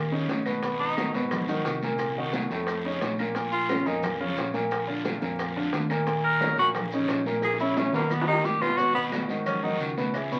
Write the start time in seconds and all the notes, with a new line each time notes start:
Already playing: D#2
0.11 C#3 C#4 D#4, high bongo
0.28 G#1, high bongo, low bongo, high conga, short guiro, maracas
0.45 B2 B3 B4, high conga, short guiro, claves, maracas
0.63 B2 B3 B4, high bongo, high conga, long guiro, maracas
0.80 D#4, high bongo, high conga
0.97 D#3 D#4 F#4, high bongo, high conga, short guiro, claves, maracas
1.14 G#2 B2 A#3 B3 B4, high bongo, high conga, short guiro, maracas
1.31 high bongo, high conga, low conga, long guiro, claves, maracas
1.48 D#3 D#4 F#4, high bongo, high conga, low conga, maracas
1.65 C2, high bongo, low bongo, high conga, short guiro, maracas
1.82 A#2 A#3 A#4, high conga, short guiro, maracas
1.99 high bongo, high conga, long guiro, claves, maracas
2.16 D#3 D#4 F#4, high bongo, high conga
2.33 D#3 D#4 F#4, high bongo, high conga, short guiro, maracas
2.50 F2 A2 A3 A4, high bongo, short guiro, maracas
2.67 high bongo, high conga, long guiro, claves, maracas
2.84 C#3 C#4 D#4, high bongo, high conga
3.01 A#1, high bongo, low bongo, high conga, short guiro, maracas
3.18 A#2 A#3 A#4, high conga, short guiro, claves, maracas
3.35 A#2 A#3 A#4, high bongo, long guiro, maracas
3.52 F4, high bongo, high conga, maracas
3.69 C#3 C#4 F4, high bongo, high conga, short guiro, claves, maracas
3.86 F2 A#2 A#3 D#4 A#4, high bongo, high conga, short guiro, maracas
4.03 high bongo, high conga, low conga, long guiro, claves, maracas
4.20 C#3 C#4 F4, high bongo, high conga, low conga
4.37 A#1, high bongo, low bongo, high conga, short guiro, maracas
4.54 A#2 A#3 A#4, high conga, short guiro, maracas
4.71 high bongo, high conga, long guiro, claves, maracas
4.87 D3 D4 F4, high bongo, high conga
5.04 D3 D4 F4, high bongo, high conga, short guiro, maracas
5.22 F2 A#2 A#3 A#4, high bongo, short guiro, maracas
5.39 high bongo, high conga, long guiro, claves, maracas
5.56 D3 D4 F4, high bongo, high conga
5.73 D#2, high bongo, low bongo, high conga, short guiro, maracas
5.90 A#2 A#3 A#4, short guiro, claves, maracas
6.07 A#2 A#3 A#4, high bongo, high conga, long guiro, maracas
6.24 A#4, high bongo, high conga
6.41 C#3 C#4 D#4, high bongo, high conga, short guiro, claves, maracas
6.57 A#1 A#2 A#3 F#4 A#4, high bongo, high conga, short guiro, maracas
6.75 high bongo, high conga, low conga, long guiro, claves, maracas
6.92 C#3 C#4 D#4, high bongo, high conga, maracas
7.08 A#1, high bongo, low bongo, high conga, short guiro, maracas
7.26 A#2 A#3 A#4, high conga, short guiro, maracas
7.42 G#4, high bongo, high conga, long guiro, claves, maracas
7.54 high bongo
7.59 C#3 C#4 E4, high conga, maracas
7.76 C#3 C#4 E4, low bongo, high conga, short guiro, maracas
7.92 D#2 B2 A#3 B3 B4, short guiro, maracas
7.99 low bongo
8.10 B3, low bongo, high conga, long guiro, claves, maracas
8.21 low bongo
8.28 D#3 D#4 G4
8.33 low bongo
8.44 G#1 G4, low bongo, high conga, short guiro, maracas
8.61 B2 B3 F4 B4, high conga, short guiro, claves, maracas
8.67 low bongo
8.77 B2 B3 F#4 B4, cowbell, high conga, long guiro, maracas
8.95 B2 B3 B4, high conga, maracas
9.12 cowbell, high conga, short guiro, claves, maracas
9.28 G#2 D#3 D#4 F#4, high conga, short guiro, maracas
9.46 C#4, cowbell, high conga, low conga, long guiro, claves, maracas
9.63 D#3 D#4 F#4, high conga, low conga
9.79 C#2, cowbell, high conga, short guiro, maracas
9.97 B2 B3 B4, high conga, short guiro, maracas
10.14 E3 E4 G#4, cowbell, high conga, long guiro, claves, maracas
10.32 B2 B3 B4, high conga, maracas